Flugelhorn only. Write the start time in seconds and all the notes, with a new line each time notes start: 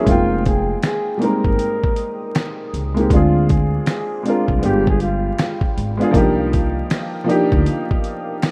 0.08 F4
0.46 G#4
0.85 G#4
1.22 A#4
3.13 F4
3.50 G#4
3.89 G#4
4.26 F4
4.64 G4
4.88 G#4
5.02 F4